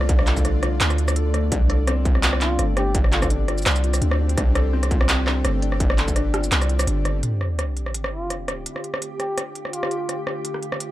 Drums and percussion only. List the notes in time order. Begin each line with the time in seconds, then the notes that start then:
0.01 cross-stick
0.09 kick, closed hi-hat
0.19 cross-stick
0.27 clap, closed hi-hat
0.37 kick, shaker
0.45 cross-stick, closed hi-hat
0.63 cross-stick, closed hi-hat
0.81 clap, closed hi-hat
0.90 cross-stick, shaker
0.98 closed hi-hat
1.08 cross-stick, shaker
1.16 closed hi-hat
1.34 cross-stick, closed hi-hat
1.52 kick, closed hi-hat
1.70 cross-stick, closed hi-hat
1.87 cross-stick, closed hi-hat
2.05 kick, closed hi-hat
2.15 cross-stick
2.23 clap, closed hi-hat
2.33 cross-stick
2.41 clap, closed hi-hat
2.59 cross-stick, closed hi-hat
2.77 cross-stick, closed hi-hat
2.95 kick, closed hi-hat
3.04 cross-stick
3.12 clap, closed hi-hat
3.22 kick, cross-stick, shaker
3.30 closed hi-hat
3.48 cross-stick, closed hi-hat
3.58 shaker
3.62 shaker
3.66 cross-stick, clap, closed hi-hat, shaker
3.71 shaker
3.76 shaker
3.84 closed hi-hat
3.94 cross-stick, shaker
4.02 closed hi-hat
4.11 cross-stick
4.29 closed hi-hat
4.37 kick, cross-stick, closed hi-hat
4.55 cross-stick, closed hi-hat
4.83 cross-stick, closed hi-hat
4.91 kick, closed hi-hat
5.01 cross-stick
5.09 clap, closed hi-hat
5.27 cross-stick, clap
5.45 cross-stick, closed hi-hat
5.62 closed hi-hat
5.72 cross-stick
5.80 kick, closed hi-hat
5.90 cross-stick
5.98 clap, closed hi-hat
6.08 kick, shaker
6.16 cross-stick, closed hi-hat
6.34 cross-stick, closed hi-hat
6.44 shaker
6.52 clap, closed hi-hat
6.61 cross-stick, shaker
6.69 closed hi-hat
6.79 cross-stick, shaker
6.87 closed hi-hat
7.05 cross-stick, closed hi-hat
7.23 closed hi-hat
7.41 cross-stick
7.59 cross-stick, closed hi-hat
7.77 closed hi-hat
7.86 cross-stick
7.94 closed hi-hat
8.04 cross-stick
8.30 cross-stick, closed hi-hat
8.48 cross-stick, closed hi-hat
8.66 closed hi-hat
8.76 cross-stick
8.84 closed hi-hat
8.94 cross-stick
9.02 closed hi-hat
9.20 cross-stick, closed hi-hat
9.38 cross-stick, closed hi-hat
9.55 closed hi-hat
9.65 cross-stick
9.73 closed hi-hat
9.83 cross-stick
9.91 closed hi-hat
10.09 cross-stick, closed hi-hat
10.27 cross-stick
10.45 closed hi-hat
10.54 cross-stick
10.63 closed hi-hat
10.72 cross-stick
10.80 closed hi-hat